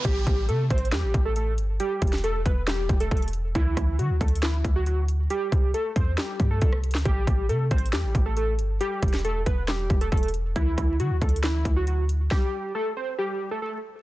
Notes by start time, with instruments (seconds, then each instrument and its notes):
0.05 808-style bass A1, synth keys G4, kick, closed hi-hat, crash
0.27 808-style bass A1, kick, cross-stick, closed hi-hat
0.49 808-style bass C3, synth keys A4, closed hi-hat
0.70 808-style bass A1, synth keys C5, kick, closed hi-hat
0.78 closed hi-hat
0.85 closed hi-hat
0.92 808-style bass E2, synth keys G4, snare, clap, closed hi-hat
1.03 808-style bass A1
1.14 808-style bass A1, kick, closed hi-hat
1.25 synth keys A4
1.36 synth keys A4, closed hi-hat
1.58 808-style bass G1, closed hi-hat
1.80 synth keys G4, closed hi-hat
2.02 808-style bass E1, kick, closed hi-hat
2.07 closed hi-hat
2.13 snare, closed hi-hat
2.18 closed hi-hat
2.24 synth keys A4, closed hi-hat
2.45 808-style bass E1, synth keys B4, kick, closed hi-hat
2.67 synth keys G4, snare, clap, closed hi-hat
2.89 808-style bass E1, kick, closed hi-hat
3.00 synth keys A4, closed hi-hat
3.11 808-style bass E1, synth keys A4, kick, closed hi-hat
3.17 closed hi-hat
3.22 closed hi-hat
3.28 closed hi-hat
3.33 closed hi-hat
3.55 808-style bass D2, synth keys E4, kick, closed hi-hat
3.77 808-style bass D2, kick, cross-stick, closed hi-hat
3.99 808-style bass D3, synth keys F#4, closed hi-hat
4.10 808-style bass D2
4.21 808-style bass D2, synth keys A4, kick, closed hi-hat
4.28 closed hi-hat
4.35 closed hi-hat
4.43 synth keys E4, snare, clap, closed hi-hat
4.64 808-style bass D2, kick, closed hi-hat
4.76 synth keys F#4
4.86 synth keys F#4, closed hi-hat
5.08 closed hi-hat
5.30 synth keys G4, closed hi-hat
5.52 808-style bass C2, kick, closed hi-hat
5.74 synth keys A4, closed hi-hat
5.96 808-style bass E2, synth keys C5, kick, closed hi-hat
6.18 synth keys G4, snare, clap, closed hi-hat
6.40 808-style bass G2, kick, closed hi-hat
6.51 synth keys A4
6.61 808-style bass C2, synth keys A4, kick, closed hi-hat
6.72 cross-stick
6.83 closed hi-hat, open hi-hat
6.91 808-style bass D2, snare, closed hi-hat
6.95 clap, closed hi-hat
7.05 808-style bass A1, synth keys G4, kick, closed hi-hat
7.27 808-style bass A1, kick, cross-stick, closed hi-hat
7.49 808-style bass C3, synth keys A4, closed hi-hat
7.71 808-style bass A1, synth keys C5, kick, closed hi-hat
7.78 closed hi-hat
7.86 closed hi-hat
7.93 808-style bass E2, synth keys G4, snare, clap, closed hi-hat
8.04 808-style bass A1
8.15 808-style bass A1, kick, closed hi-hat
8.26 synth keys A4
8.37 synth keys A4, closed hi-hat
8.59 808-style bass G1, closed hi-hat
8.81 synth keys G4, closed hi-hat
9.02 808-style bass E1, kick, closed hi-hat
9.08 closed hi-hat
9.13 snare, closed hi-hat
9.19 closed hi-hat
9.25 synth keys A4, closed hi-hat
9.46 808-style bass E1, synth keys B4, kick, closed hi-hat
9.68 synth keys G4, snare, clap, closed hi-hat
9.90 808-style bass E1, kick, closed hi-hat
10.01 synth keys A4, closed hi-hat
10.12 808-style bass E1, synth keys A4, kick, closed hi-hat
10.17 closed hi-hat
10.23 closed hi-hat
10.28 closed hi-hat
10.34 closed hi-hat
10.56 808-style bass D2, synth keys E4, kick, closed hi-hat
10.78 808-style bass D2, kick, cross-stick, closed hi-hat
11.00 808-style bass D3, synth keys F#4, closed hi-hat
11.11 808-style bass D2
11.21 808-style bass D2, synth keys A4, kick, closed hi-hat
11.29 closed hi-hat
11.36 closed hi-hat
11.43 synth keys E4, snare, clap, closed hi-hat
11.65 808-style bass D2, kick, closed hi-hat
11.76 synth keys F#4
11.87 synth keys F#4, closed hi-hat
12.09 closed hi-hat
12.31 synth keys G4, kick, snare
12.75 synth keys A4
12.97 synth keys C5
13.19 synth keys G4
13.51 synth keys A4
13.62 synth keys A4